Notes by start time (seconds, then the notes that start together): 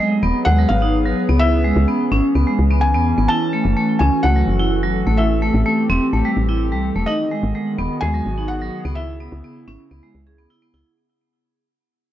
Already playing: F#3 B3 G#4 D#5
0.00 G#3
0.13 B4
0.23 D#1 B3
0.45 D#2 G#3 F#5
0.58 F#3
0.69 G#1 F5
0.82 D#4
1.05 F#3
1.17 E3
1.29 C#2 B3 C#4
1.39 E4 E5
1.64 G#3
1.76 C#2
1.88 B3
2.12 G#1 C#4
2.35 C#2 B3
2.47 G#3
2.59 C#2
2.71 B3
2.81 G#5
2.94 E2 B3
3.18 G#1 B3
3.28 E4 A5
3.53 A3
3.65 F#1 A4
3.72 F#4
3.77 A3
3.99 C#2 C#4 G#5
4.23 C#2 A3 F#5
4.36 F#3
4.48 F#1
4.60 E4
4.83 F#3
5.07 A1 A3
5.17 E4 E5
5.23 C4
5.29 G4
5.42 A3
5.54 A1
5.66 A3
5.90 E1 C4
6.13 A1 A3
6.25 G3
6.37 A1
6.49 E4
6.72 C2 G3
6.96 E1 A3
7.06 D#3 D#4 D#5
7.17 B3
7.31 G#3
7.37 G#4
7.43 G#1
7.55 G#3
7.71 F#4
7.79 D#1 B3
8.01 D#2 G#3 G#5
8.14 F#3
8.26 G#1
8.38 D#4
8.48 F#5
8.61 F#3
8.73 C#3
8.85 C#2 B3
8.95 E4 E5
8.99 E4
9.20 B3
9.32 C#2
9.44 B3
9.68 G#1 C#4
9.91 C#2 B3
10.03 G#3
10.15 C#2
10.27 G#4
10.38 B3
10.50 E4
10.62 B3
10.74 C#2 E4